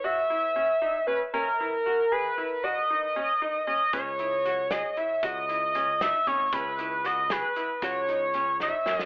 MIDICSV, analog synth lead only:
0, 0, Header, 1, 2, 480
1, 0, Start_track
1, 0, Tempo, 518583
1, 41, Time_signature, 5, 3, 24, 8
1, 8380, End_track
2, 0, Start_track
2, 0, Title_t, "Analog synth lead"
2, 0, Program_c, 0, 81
2, 38, Note_on_c, 0, 76, 103
2, 984, Note_off_c, 0, 76, 0
2, 990, Note_on_c, 0, 71, 91
2, 1101, Note_off_c, 0, 71, 0
2, 1235, Note_on_c, 0, 70, 91
2, 1963, Note_on_c, 0, 71, 99
2, 1977, Note_off_c, 0, 70, 0
2, 2438, Note_on_c, 0, 75, 105
2, 2452, Note_off_c, 0, 71, 0
2, 3387, Note_off_c, 0, 75, 0
2, 3392, Note_on_c, 0, 75, 102
2, 3620, Note_off_c, 0, 75, 0
2, 3643, Note_on_c, 0, 73, 106
2, 4358, Note_on_c, 0, 75, 103
2, 4372, Note_off_c, 0, 73, 0
2, 4607, Note_on_c, 0, 76, 96
2, 4621, Note_off_c, 0, 75, 0
2, 4852, Note_on_c, 0, 75, 99
2, 4866, Note_off_c, 0, 76, 0
2, 5567, Note_on_c, 0, 76, 92
2, 5581, Note_off_c, 0, 75, 0
2, 5803, Note_on_c, 0, 73, 90
2, 5817, Note_off_c, 0, 76, 0
2, 6046, Note_on_c, 0, 71, 92
2, 6060, Note_off_c, 0, 73, 0
2, 6531, Note_on_c, 0, 75, 91
2, 6545, Note_off_c, 0, 71, 0
2, 6773, Note_on_c, 0, 71, 89
2, 6787, Note_off_c, 0, 75, 0
2, 7246, Note_off_c, 0, 71, 0
2, 7254, Note_on_c, 0, 73, 83
2, 7930, Note_off_c, 0, 73, 0
2, 7985, Note_on_c, 0, 76, 101
2, 8309, Note_off_c, 0, 76, 0
2, 8309, Note_on_c, 0, 75, 101
2, 8380, Note_off_c, 0, 75, 0
2, 8380, End_track
0, 0, End_of_file